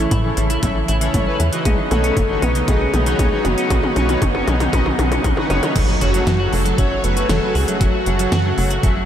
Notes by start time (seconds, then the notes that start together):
Already playing: C#3 E3 A3 E4
0.11 A2 E4, kick, closed hi-hat, mid tom
0.24 E3 C#4 E4 A4 C#5
0.37 A1 E3, closed hi-hat
0.50 E4, closed hi-hat
0.63 A1 E3 C#4 E4 A4 E5, kick, closed hi-hat, mid tom
0.76 E3
0.88 A1 E4, closed hi-hat
1.01 E3 C#4 E4 A4 C#5, closed hi-hat
1.14 A1 E3, kick, closed hi-hat, mid tom
1.27 C#4 E4 A4 B4
1.40 E2 E3, closed hi-hat
1.53 E3 D#4 F#4 B4 D#5, closed hi-hat
1.65 B1 C#3 F#3 B3 C#4 D#4 G#4, kick, closed hi-hat, mid tom
1.78 D#3
1.91 B1 D#3 D#4 F#4 A4 B4 C#5, closed hi-hat, mid tom
2.04 C#4, closed hi-hat
2.17 F#1 D#3, kick, closed hi-hat, mid tom
2.29 D#3 D#4 F#4 B4 C#5
2.42 B1 C#4 B4, closed hi-hat, mid tom
2.55 D#3, closed hi-hat
2.68 B1 D#3 D#4 F#4 G#4 B4 D#5, kick, closed hi-hat, mid tom
2.81 C#4
2.94 B1 D#3, closed hi-hat, mid tom
3.06 D#3 D#4 F#4 B4 C#5, closed hi-hat
3.19 B1 C#4, kick, closed hi-hat, mid tom
3.32 D#3 D#4 F#4 B4 C#5
3.45 F#1 D#3 F#4, closed hi-hat, mid tom
3.58 C#4 D#4 F#4 B4 D#5, closed hi-hat
3.70 B1 D#3, kick, closed hi-hat, mid tom
3.83 D#3, mid tom
3.96 B1 C#4 D#4 F#4 B4 C#5, closed hi-hat, mid tom
4.09 D#3, closed hi-hat, mid tom
4.22 F#1 D#3, kick, closed hi-hat, mid tom
4.35 C#4 D#4 F#4 B4 C#5, mid tom
4.48 B1 D#3, closed hi-hat, mid tom
4.60 D#3, closed hi-hat, mid tom
4.73 B1 C#4 D#4 F#4 B4 D#5, kick, closed hi-hat, mid tom
4.86 D#3, mid tom
4.99 B1 D#3, closed hi-hat, mid tom
5.12 C#4, closed hi-hat, mid tom
5.24 B1 D#3, kick, closed hi-hat, mid tom
5.37 D#3 D#4 F#4 B4 F#5, mid tom
5.50 F#1 C#4 D#4 F#4 B4 C#5, closed hi-hat, mid tom
5.63 D#3, closed hi-hat, mid tom
5.76 F#1 C#3 F#3 A3 F#4, kick, closed hi-hat, crash, impact
5.89 F#3
6.01 F#1 C#4 F#4 A4 C#5, closed hi-hat
6.14 F#3, closed hi-hat
6.27 F#2 F#3, snare, closed hi-hat
6.40 C#4 F#4 A4 C#5
6.52 F#1 F#3 A4, open hi-hat
6.65 F#3, closed hi-hat
6.78 F#1 C#4 F#4 A4 C#5 E5, kick, closed hi-hat
6.91 F#3
7.04 F#1 F#3 B4, closed hi-hat
7.17 C#4 F#4 A4 C#5, closed hi-hat
7.29 F#1 F#3 A4, snare, closed hi-hat
7.42 F#3 C#4 F#4 A4 B4
7.55 C#2 F#4 G#4, open hi-hat
7.68 F#3 C#4 F#4 A4 E5, closed hi-hat
7.74 G#4
7.81 F#1 F#3 F#4, kick, closed hi-hat
7.94 F#4
8.06 F#1 F#3 C#4 F#4 A4 C#5, closed hi-hat
8.19 F#3, closed hi-hat
8.32 F#2 F#4, snare, closed hi-hat
8.45 F#3 C#4 F#4 A4 C#5
8.58 F#1 F#3, open hi-hat
8.71 F#4, closed hi-hat
8.83 F#1 F#3 C#4 F#4 A4 E5, kick, closed hi-hat
8.96 F#3